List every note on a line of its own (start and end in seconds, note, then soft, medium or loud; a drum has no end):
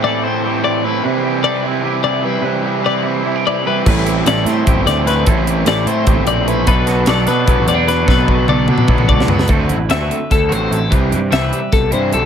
0.00 1.04 A2 medium
0.00 0.44 E3 medium
0.00 0.25 C4 medium
0.00 0.46 G4 medium
0.00 0.24 D5 medium
0.04 0.25 A3 medium
0.04 0.25 C4 medium
0.04 0.23 E4 medium
0.04 1.05 A4 medium
0.24 0.43 A3 medium
0.24 0.44 C4 medium
0.24 0.65 C4 medium
0.24 0.45 E4 medium
0.24 0.64 C5 medium
0.43 1.02 A2 medium
0.43 0.84 E3 medium
0.43 0.84 A3 medium
0.43 0.85 C4 loud
0.43 0.86 E4 loud
0.43 1.25 G4 medium
0.64 1.65 C4 medium
0.64 0.85 D5 medium
0.84 1.03 E3 medium
0.84 1.02 A3 medium
0.84 1.03 A3 medium
0.84 1.05 C4 medium
0.84 1.05 E4 medium
0.84 1.04 B4 medium
1.03 1.81 C3 medium
1.03 2.40 C3 medium
1.03 1.42 E3 loud
1.03 1.25 G3 loud
1.03 1.24 C4 loud
1.03 1.23 E4 medium
1.03 1.43 B4 medium
1.23 1.43 G3 medium
1.23 1.44 C4 medium
1.23 1.45 E4 medium
1.23 1.84 G4 medium
1.42 1.82 E3 medium
1.42 1.65 G3 medium
1.42 1.64 C4 medium
1.42 1.62 E4 medium
1.42 1.56 A4 medium
1.42 1.64 D5 medium
1.56 2.41 B4 medium
1.63 1.83 G3 medium
1.63 1.84 C4 medium
1.63 1.84 E4 medium
1.63 2.04 E4 medium
1.82 2.42 C3 loud
1.82 2.23 E3 loud
1.82 2.24 G3 loud
1.82 2.25 C4 medium
1.82 2.25 E4 loud
1.82 2.63 G4 medium
2.04 3.03 E4 medium
2.04 2.25 D5 medium
2.23 2.43 E3 medium
2.23 3.65 G3 medium
2.23 2.43 G3 medium
2.23 2.44 C4 medium
2.23 2.44 E4 medium
2.23 2.45 B4 medium
2.41 3.81 C3 medium
2.41 2.84 C3 medium
2.41 2.82 E3 medium
2.41 2.65 G3 loud
2.41 2.64 C4 loud
2.41 2.63 E4 loud
2.41 2.83 B4 medium
2.63 2.83 G3 medium
2.63 2.84 C4 medium
2.63 2.85 E4 medium
2.63 3.23 G4 medium
2.82 3.24 E3 medium
2.82 3.05 G3 medium
2.82 3.05 C4 medium
2.82 3.03 E4 medium
2.82 3.88 B4 medium
2.82 3.05 D5 medium
3.03 3.25 G3 medium
3.03 3.25 C4 medium
3.03 3.23 E4 medium
3.03 3.26 E4 medium
3.23 3.83 C3 loud
3.23 3.65 E3 loud
3.23 3.66 G3 medium
3.23 3.66 C4 loud
3.23 3.36 E4 medium
3.23 3.68 E4 loud
3.36 3.86 G4 soft
3.46 4.47 E4 medium
3.46 3.66 D5 medium
3.66 3.85 E3 medium
3.66 5.06 G3 medium
3.66 3.85 G3 medium
3.66 3.86 C4 medium
3.66 3.87 E4 medium
3.66 3.86 B4 medium
3.85 4.23 A1 loud
3.85 4.64 A2 medium
3.85 5.25 A2 medium
3.85 4.25 E3 medium
3.85 4.07 A3 medium
3.85 4.06 C4 medium
3.85 4.04 E4 loud
3.85 4.28 B4 medium
3.85 kick loud
3.85 crash medium
4.05 4.26 A3 medium
4.05 4.26 C4 medium
4.05 4.27 E4 medium
4.05 4.66 G4 medium
4.05 closed hi-hat medium
4.25 4.44 A1 loud
4.25 4.64 E3 medium
4.25 4.47 A3 medium
4.25 4.46 C4 medium
4.25 4.44 E4 medium
4.25 5.26 A4 medium
4.25 4.47 D5 medium
4.25 snare loud
4.25 closed hi-hat medium
4.45 4.64 A2 medium
4.45 4.65 A3 medium
4.45 4.65 C4 medium
4.45 4.87 C4 medium
4.45 4.66 E4 medium
4.45 4.86 C5 medium
4.45 snare soft
4.45 closed hi-hat medium
4.64 4.75 A1 loud
4.64 5.24 A2 loud
4.64 5.04 E3 loud
4.64 5.06 A3 loud
4.64 5.06 C4 loud
4.64 5.07 E4 loud
4.64 5.25 G4 medium
4.64 kick loud
4.64 closed hi-hat medium
4.76 4.85 G1 medium
4.86 5.23 D2 medium
4.86 5.86 C4 medium
4.86 5.06 D5 medium
4.86 snare soft
4.86 closed hi-hat medium
5.05 5.25 E3 medium
5.05 5.41 A3 medium
5.05 5.26 A3 medium
5.05 5.26 C4 medium
5.05 5.27 E4 medium
5.05 5.27 B4 medium
5.05 snare soft
5.05 closed hi-hat medium
5.25 5.64 A1 loud
5.25 5.66 A2 medium
5.25 6.67 A2 medium
5.25 5.64 E3 medium
5.25 5.48 A3 loud
5.25 5.46 C4 loud
5.25 5.44 E4 loud
5.25 5.38 A4 medium
5.25 kick loud
5.25 closed hi-hat loud
5.38 5.67 B4 medium
5.45 5.66 A3 medium
5.45 5.66 C4 medium
5.45 5.67 E4 medium
5.45 6.06 G4 medium
5.45 closed hi-hat medium
5.66 5.85 A1 loud
5.66 6.06 E3 medium
5.66 5.88 A3 medium
5.66 5.86 C4 medium
5.66 5.85 E4 medium
5.66 6.67 A4 medium
5.66 5.87 D5 medium
5.66 snare loud
5.66 closed hi-hat loud
5.86 6.05 A2 medium
5.86 6.07 A3 medium
5.86 6.25 C4 medium
5.86 6.07 C4 medium
5.86 6.07 E4 medium
5.86 6.27 C5 medium
5.86 closed hi-hat medium
6.06 6.15 A1 loud
6.06 6.65 A2 medium
6.06 6.45 E3 loud
6.06 6.47 A3 loud
6.06 6.47 C4 loud
6.06 6.47 E4 loud
6.06 6.65 G4 medium
6.06 kick loud
6.06 closed hi-hat loud
6.16 6.25 G1 medium
6.26 6.64 A#1 medium
6.26 6.67 C4 medium
6.26 6.48 D5 medium
6.26 closed hi-hat medium
6.45 6.66 E3 medium
6.45 6.70 A3 medium
6.45 6.66 A3 medium
6.45 6.66 C4 medium
6.45 6.67 E4 loud
6.45 6.67 B4 medium
6.45 closed hi-hat medium
6.66 7.05 B1 loud
6.66 7.06 B2 loud
6.66 8.04 B2 medium
6.66 6.89 F#3 loud
6.66 6.87 B3 loud
6.66 6.86 D4 loud
6.66 7.08 A4 medium
6.66 7.08 B4 medium
6.66 kick loud
6.66 closed hi-hat medium
6.86 7.07 F#3 medium
6.86 7.07 B3 medium
6.86 7.08 D4 medium
6.86 7.45 F#4 medium
6.86 snare soft
6.86 closed hi-hat medium
7.06 7.26 B1 loud
7.06 7.45 B2 medium
7.06 7.28 F#3 medium
7.06 7.27 B3 medium
7.06 7.26 D4 medium
7.06 8.05 A4 medium
7.06 7.27 D5 medium
7.06 snare loud
7.06 closed hi-hat medium
7.26 7.46 B2 medium
7.26 7.46 F#3 medium
7.26 7.48 B3 medium
7.26 7.48 D4 medium
7.26 7.66 D4 medium
7.26 7.68 B4 medium
7.26 snare soft
7.26 closed hi-hat medium
7.46 7.57 B1 loud
7.46 7.85 B2 medium
7.46 7.86 F#3 medium
7.46 7.87 B3 loud
7.46 7.88 D4 loud
7.46 7.56 E4 medium
7.46 kick loud
7.46 closed hi-hat medium
7.56 7.67 A1 medium
7.56 8.07 F#4 medium
7.66 8.05 E2 medium
7.66 7.74 C4 medium
7.66 7.88 D5 medium
7.66 closed hi-hat medium
7.74 8.06 D4 soft
7.85 8.07 B2 medium
7.85 8.07 F#3 medium
7.85 8.09 B3 medium
7.85 8.08 B3 medium
7.85 8.09 D4 medium
7.85 8.07 B4 medium
7.85 closed hi-hat medium
7.90 snare soft
8.05 8.46 B1 loud
8.05 9.46 B2 medium
8.05 8.47 B2 medium
8.05 8.29 F#3 medium
8.05 8.47 A4 medium
8.05 8.49 B4 medium
8.05 kick loud
8.05 snare medium
8.09 8.28 B3 medium
8.09 8.26 D4 medium
8.27 8.47 F#3 medium
8.27 8.49 B3 medium
8.27 8.49 D4 medium
8.27 8.88 F#4 medium
8.27 kick medium
8.48 8.67 B1 medium
8.48 8.87 B2 medium
8.48 8.70 F#3 medium
8.48 8.69 B3 medium
8.48 8.68 D4 medium
8.48 9.48 A4 medium
8.48 8.69 D5 medium
8.48 mid tom medium
8.68 8.87 B2 medium
8.68 8.88 F#3 medium
8.68 8.90 B3 medium
8.68 8.90 D4 medium
8.68 9.08 D4 medium
8.68 9.08 B4 medium
8.68 mid tom medium
8.78 mid tom medium
8.88 8.98 B1 medium
8.88 9.26 B2 loud
8.88 9.28 F#3 loud
8.88 9.28 B3 loud
8.88 9.29 D4 loud
8.88 8.99 E4 medium
8.88 kick loud
8.88 mid tom medium
8.98 9.08 A1 medium
8.98 9.49 F#4 medium
8.98 mid tom medium
9.09 9.47 C#2 medium
9.09 9.47 D4 medium
9.09 9.30 D5 medium
9.09 kick medium
9.20 snare medium
9.28 9.47 B2 medium
9.28 9.48 F#3 medium
9.28 9.47 B3 medium
9.28 9.48 B3 medium
9.28 9.49 D4 medium
9.28 9.50 B4 medium
9.28 floor tom loud
9.39 snare medium
9.48 9.71 D2 medium
9.48 9.75 D3 medium
9.48 10.91 D3 medium
9.48 9.75 A3 medium
9.48 9.76 C4 medium
9.48 9.76 F#4 medium
9.48 9.60 A4 medium
9.48 kick loud
9.48 closed hi-hat medium
9.60 9.89 B4 medium
9.69 9.88 A1 medium
9.69 10.30 E4 medium
9.69 closed hi-hat medium
9.89 10.09 D2 medium
9.89 10.16 D3 medium
9.89 10.16 A3 medium
9.89 10.16 C4 medium
9.89 10.16 F#4 medium
9.89 10.01 A4 medium
9.89 10.31 E5 medium
9.89 snare loud
9.89 closed hi-hat medium
10.01 10.90 B4 medium
10.11 10.89 A3 medium
10.11 closed hi-hat medium
10.30 10.50 D2 medium
10.30 10.71 E4 medium
10.30 10.52 A4 medium
10.30 kick loud
10.30 snare soft
10.30 closed hi-hat medium
10.49 10.70 A1 medium
10.49 10.90 A2 medium
10.49 10.77 D3 medium
10.49 10.77 A3 medium
10.49 10.77 C4 medium
10.49 12.26 C4 medium
10.49 10.76 F#4 medium
10.49 10.73 C5 medium
10.49 closed hi-hat medium
10.71 10.90 A1 medium
10.71 11.11 E4 medium
10.71 10.92 A4 medium
10.71 closed hi-hat medium
10.90 11.13 C2 medium
10.90 11.72 C3 medium
10.90 11.17 E3 medium
10.90 11.17 G3 medium
10.90 11.17 C4 medium
10.90 11.18 E4 medium
10.90 11.31 B4 medium
10.90 kick loud
10.90 closed hi-hat medium
11.11 11.31 G2 medium
11.11 12.26 G4 medium
11.11 closed hi-hat medium
11.31 11.51 C2 medium
11.31 11.58 E3 medium
11.31 11.58 G3 medium
11.31 11.58 C4 medium
11.31 11.58 E4 medium
11.31 11.42 A4 medium
11.31 11.73 E5 medium
11.31 snare loud
11.31 closed hi-hat medium
11.42 12.26 B4 medium
11.53 12.26 G3 medium
11.53 closed hi-hat medium
11.72 11.92 C2 medium
11.72 11.93 B2 medium
11.72 11.93 A4 medium
11.72 kick loud
11.72 snare soft
11.72 closed hi-hat medium
11.91 12.12 G2 medium
11.91 12.13 C3 medium
11.91 12.19 E3 medium
11.91 12.19 G3 medium
11.91 12.19 C4 medium
11.91 12.18 E4 medium
11.91 12.13 C5 medium
11.91 closed hi-hat medium
12.12 12.26 B1 medium
12.12 12.26 D3 medium
12.12 12.26 A4 medium
12.12 closed hi-hat medium